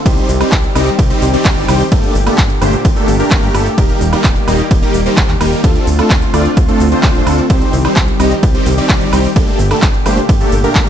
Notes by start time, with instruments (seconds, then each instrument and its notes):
0.06 analog synth bass C2, analog synth pad D#3 G3 C4 G4, supersaw synth G3 C4 D#4 G4 C5, kick, closed hi-hat, ride, shaker
0.17 closed hi-hat, shaker
0.29 analog synth bass C2, open hi-hat, shaker
0.41 supersaw synth G3 C4 D#4 G4 C5, closed hi-hat, high woodblock, shaker
0.52 analog synth bass C2, kick, clap, closed hi-hat, ride, shaker
0.64 closed hi-hat
0.75 analog synth bass C2, supersaw synth G3 C4 D#4 G4 D#5, open hi-hat, high woodblock, shaker
0.87 closed hi-hat, shaker
0.99 analog synth bass C2, kick, closed hi-hat, ride, shaker
1.10 supersaw synth G3 C4 D#4 G4 C5, closed hi-hat, shaker
1.22 analog synth bass C2, open hi-hat, shaker
1.34 supersaw synth G3 C4 D#4 G4 D5, closed hi-hat, shaker
1.45 analog synth bass C2, kick, clap, closed hi-hat, ride, shaker
1.57 analog synth bass G1, closed hi-hat, shaker
1.68 analog synth bass C2, supersaw synth G3 C4 D#4 G4 C5, open hi-hat, high woodblock, shaker
1.80 open hi-hat, shaker
1.92 analog synth bass G1, analog synth pad A#2 D3 G4, supersaw synth A3 A#3 D4 G4 A4, kick, closed hi-hat, ride, shaker
2.03 closed hi-hat, shaker
2.15 analog synth bass G1, open hi-hat, shaker
2.27 supersaw synth A3 A#3 D4 G4 A4, closed hi-hat, high woodblock, shaker
2.38 analog synth bass G1, kick, clap, closed hi-hat, ride, shaker
2.50 closed hi-hat
2.61 analog synth bass G1, supersaw synth A3 A#3 D4 G4 C5, open hi-hat, high woodblock, shaker
2.73 closed hi-hat, shaker
2.85 analog synth bass G1, kick, closed hi-hat, ride, shaker
2.96 supersaw synth A3 A#3 D4 G4 A4, closed hi-hat, shaker
3.08 analog synth bass G1, open hi-hat, shaker
3.20 supersaw synth A3 A#3 D4 G4 A#4, closed hi-hat, shaker
3.31 analog synth bass G1, kick, clap, closed hi-hat, ride, shaker
3.43 analog synth bass G2, closed hi-hat, shaker
3.55 analog synth bass G1, supersaw synth A3 A#3 D4 G4 A4, open hi-hat, high woodblock, shaker
3.66 closed hi-hat, shaker
3.78 analog synth bass D#1, analog synth pad D#3 G3 A#3, supersaw synth G3 A#3 D#4 G4 A#4, kick, closed hi-hat, ride, shaker
3.89 closed hi-hat, shaker
4.01 analog synth bass D#1, open hi-hat, shaker
4.13 supersaw synth G3 A#3 D#4 G4 A#4, closed hi-hat, high woodblock, shaker
4.24 analog synth bass D#1, kick, clap, closed hi-hat, ride, shaker
4.36 closed hi-hat, shaker
4.48 analog synth bass D#1, supersaw synth G3 A#3 D#4 G4 D#5, open hi-hat, high woodblock, shaker
4.59 closed hi-hat, shaker
4.71 analog synth bass D#1, kick, closed hi-hat, ride, shaker
4.82 supersaw synth G3 A#3 D#4 G4 A#4, closed hi-hat, shaker
4.94 analog synth bass D#1, open hi-hat, shaker
5.06 supersaw synth G3 A#3 D#4 G4 C5, closed hi-hat, shaker
5.17 analog synth bass D#1, kick, clap, closed hi-hat, ride, shaker
5.29 analog synth bass D#2, clap, closed hi-hat, shaker
5.41 analog synth bass D#1, supersaw synth G3 A#3 D#4 G4 A#4, open hi-hat, high woodblock, shaker
5.52 open hi-hat, shaker
5.64 analog synth bass D2, analog synth pad D3 A3 C4 F4, supersaw synth A3 C4 D4 F4 A4, kick, closed hi-hat, ride, shaker
5.76 closed hi-hat, shaker
5.87 analog synth bass D2, open hi-hat, shaker
5.99 supersaw synth A3 C4 D4 F4 A4, closed hi-hat, high woodblock, shaker
6.10 analog synth bass D2, kick, clap, closed hi-hat, ride, shaker
6.22 closed hi-hat
6.34 analog synth bass D2, supersaw synth A3 C4 D4 F4 D5, open hi-hat, high woodblock, shaker
6.45 closed hi-hat, shaker
6.57 analog synth bass D2, kick, closed hi-hat, ride, shaker
6.69 supersaw synth A3 C4 D4 F4 A4, closed hi-hat, shaker
6.80 analog synth bass D2, open hi-hat, shaker
6.92 supersaw synth A3 C4 D4 F4 C5, closed hi-hat, shaker
7.03 analog synth bass D2, kick, clap, closed hi-hat, ride, shaker
7.15 analog synth bass D1, closed hi-hat, shaker
7.27 analog synth bass D2, supersaw synth A3 C4 D4 F4 A4, open hi-hat, high woodblock, shaker
7.38 closed hi-hat, shaker
7.50 analog synth bass C2, analog synth pad D#3 G3 G4, supersaw synth G3 C4 D#4 G4 C5, kick, closed hi-hat, ride, shaker
7.62 closed hi-hat, shaker
7.73 analog synth bass C2, open hi-hat, shaker
7.85 supersaw synth G3 C4 D#4 G4 C5, closed hi-hat, high woodblock, shaker
7.96 analog synth bass C2, kick, clap, closed hi-hat, ride, shaker
8.08 closed hi-hat
8.20 analog synth bass C2, supersaw synth G3 C4 D#4 G4 D#5, open hi-hat, high woodblock, shaker
8.31 closed hi-hat, shaker
8.43 analog synth bass C2, kick, closed hi-hat, ride, shaker
8.55 supersaw synth G3 C4 D#4 G4 C5, closed hi-hat, shaker
8.66 analog synth bass C2, open hi-hat, shaker
8.78 supersaw synth G3 C4 D#4 G4 D5, closed hi-hat, shaker
8.89 analog synth bass C2, kick, clap, closed hi-hat, ride, shaker
9.01 analog synth bass G1, closed hi-hat, shaker
9.13 analog synth bass C2, supersaw synth G3 C4 D#4 G4 C5, open hi-hat, high woodblock, shaker
9.24 open hi-hat, shaker
9.36 analog synth bass G1, analog synth pad A#2 D3, supersaw synth A3 A#3 D4 G4 A4, kick, closed hi-hat, ride, shaker
9.48 closed hi-hat, shaker
9.59 analog synth bass G1, open hi-hat, shaker
9.71 supersaw synth A3 A#3 D4 G4 A4, closed hi-hat, high woodblock, shaker
9.82 analog synth bass G1, kick, clap, closed hi-hat, ride, shaker
9.94 closed hi-hat
10.06 analog synth bass G1, supersaw synth A3 A#3 D4 G4 C5, open hi-hat, high woodblock, shaker
10.17 closed hi-hat, shaker
10.29 analog synth bass G1, kick, closed hi-hat, ride, shaker
10.41 supersaw synth A3 A#3 D4 G4 A4, closed hi-hat, shaker
10.52 analog synth bass G1, open hi-hat, shaker
10.64 supersaw synth A3 A#3 D4 G4 A#4, closed hi-hat, shaker
10.75 analog synth bass G1, kick, clap, closed hi-hat, ride, shaker